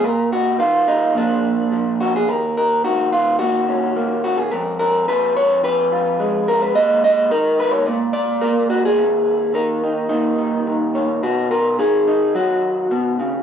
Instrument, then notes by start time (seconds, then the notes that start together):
clean electric guitar
0.04 A#2 A#4
0.33 F#4
0.59 D#3 F4
0.88 D#4
1.14 A#2 F3 A#3 D4
1.72 F3
2.00 F#4
2.16 G#4
2.28 D#2 A#4
2.57 A#4
2.84 D#3 F#4
3.12 F4
3.39 A#2 F#4
3.68 C#4
3.96 A#3
4.24 F#4
4.38 G#4
4.51 F2 A#4
4.79 A#4
5.08 F3 B4
5.37 C#5
5.63 F2 B4
5.92 F4
6.20 G#3
6.48 A#4
6.62 B4
6.74 A#2 D#5
7.04 D#5
7.31 D#3 A#4
7.60 B4
7.71 C#5
7.86 A#2 D5
8.13 D5
8.41 A#3 A#4
8.70 F#4
8.85 G#4
8.98 D#2
9.54 D#3 A#4
9.84 D#4
10.09 A#2 D#4
10.39 D#3
10.67 D#3
10.95 C#5
11.23 B2 F#4
11.51 A#4
11.79 D#3 G#4
12.08 D#4
12.35 F#3 F#4
12.91 B2
13.20 C#3